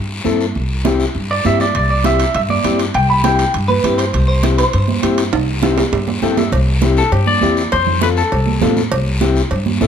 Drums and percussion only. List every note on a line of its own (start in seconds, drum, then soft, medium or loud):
0.25 high conga medium
0.25 short guiro medium
0.40 short guiro medium
0.55 high conga soft
0.55 long guiro medium
0.85 high conga loud
0.85 short guiro medium
1.00 short guiro medium
1.15 high conga soft
1.15 long guiro medium
1.44 high conga medium
1.44 short guiro medium
1.60 high conga medium
1.60 short guiro medium
1.75 high conga soft
1.75 high timbale medium
1.75 long guiro medium
2.04 high conga medium
2.04 high timbale medium
2.04 short guiro medium
2.20 high timbale medium
2.20 short guiro medium
2.34 high conga soft
2.34 high timbale medium
2.34 long guiro medium
2.49 high conga medium
2.64 high conga medium
2.64 high timbale medium
2.64 short guiro medium
2.79 high timbale medium
2.79 short guiro medium
2.94 high conga soft
2.94 high timbale medium
2.94 long guiro medium
3.24 high conga medium
3.24 high timbale medium
3.24 short guiro medium
3.39 high timbale medium
3.39 short guiro medium
3.54 high conga soft
3.54 high timbale medium
3.54 long guiro medium
3.69 high conga medium
3.84 high conga medium
3.84 high timbale medium
3.84 short guiro medium
3.98 high timbale medium
3.98 short guiro medium
4.13 high conga soft
4.13 high timbale medium
4.13 long guiro medium
4.43 high conga medium
4.43 high timbale medium
4.43 short guiro medium
4.58 high timbale medium
4.58 short guiro medium
4.73 high conga soft
4.73 high timbale medium
4.73 long guiro medium
4.88 high conga medium
5.03 high conga medium
5.03 high timbale medium
5.03 short guiro medium
5.18 high timbale medium
5.18 short guiro medium
5.33 high conga soft
5.33 high timbale medium
5.33 long guiro medium
5.63 high conga medium
5.63 high timbale medium
5.63 short guiro medium
5.78 low timbale medium
5.78 short guiro medium
5.92 high conga soft
5.92 low timbale medium
5.92 long guiro medium
6.07 high conga medium
6.07 low timbale medium
6.22 high conga medium
6.22 low timbale medium
6.22 short guiro medium
6.37 high conga medium
6.37 low timbale medium
6.37 short guiro medium
6.52 cowbell medium
6.52 high conga soft
6.52 long guiro medium
6.82 high conga medium
6.82 short guiro medium
6.97 short guiro medium
7.12 cowbell medium
7.12 high conga soft
7.12 long guiro medium
7.26 high conga medium
7.41 high conga medium
7.41 low timbale medium
7.41 short guiro medium
7.57 short guiro medium
7.72 cowbell loud
7.72 high conga soft
7.72 long guiro medium
7.87 low conga medium
8.01 high conga medium
8.01 short guiro medium
8.17 short guiro medium
8.32 cowbell medium
8.32 high conga soft
8.32 long guiro medium
8.46 high conga medium
8.62 high conga medium
8.62 low conga medium
8.62 low timbale medium
8.62 short guiro medium
8.77 high conga medium
8.77 short guiro medium
8.91 cowbell loud
8.91 high conga soft
8.91 long guiro medium
9.21 high conga medium
9.21 short guiro medium
9.36 short guiro medium
9.51 cowbell medium
9.51 high conga soft
9.51 long guiro medium
9.66 high conga medium
9.81 high conga medium
9.81 low timbale medium
9.81 short guiro medium